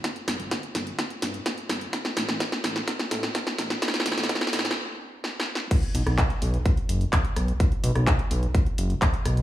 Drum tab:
CC |------------------------------------------------------------------------------------------------|------------------------------------------------------------------------------------------------|------------------------------------------------------------------------------------------------|x-----------------------------------------------------------------------------------------------|
HH |x-----x-----o-----x-----x-----x-----o-----x-----x-----x-----o-----x-----x-----x-----o-----x-----|x-----x-----o-----x-----x-----x-----o-----x-----x-----x-----o-----x-----x-----x-----o-----x-----|x-----x-----o-----x-----x-----x-----o-----x-----------------------------------------------------|x-----x-----o-----x-----x-----x-----o-----x-----x-----x-----o-----x-----x-----x-----o-----x-----|
CP |------------------------------------------------------------------------------------------------|------------------------------------------------------------------------------------------------|------------------------------------------------------------------------------------------------|------------------------x-----------------------------------------------x-----------------------|
SD |o-----------o-----------o-----------o-----------o-----------o-----------o-----------o-----------|o-----o-----o-----o-----o-----o-----o-----o-----o-----o-----o-----o-----o-----o-----o-----o-----|o--o--o--o--o--o--o--o--o--o--o--o--o--o--o--o--------------------------o-------o-------o-------|------------------r-----------------------------------------------------------------r-----------|
BD |o-----------------------o-----------------------o-----------------------o-----------------------|o-----------------------o-----------------------o-----------------------o-----------------------|o-----------------------o-----------------------------------------------------------------------|o-----------------------o-----------------------o-----------------------o-----------------------|

CC |------------------------------------------------------------------------------------------------|
HH |x-----x-----o-----x-----x-----x-----o-----x-----x-----x-----o-----x-----x-----x-----o-----x-----|
CP |------------------------x-----------------------------------------------x-----------------------|
SD |------------------r-----------------------------------------------------------------r-----------|
BD |o-----------------------o-----------------------o-----------------------o-----------------------|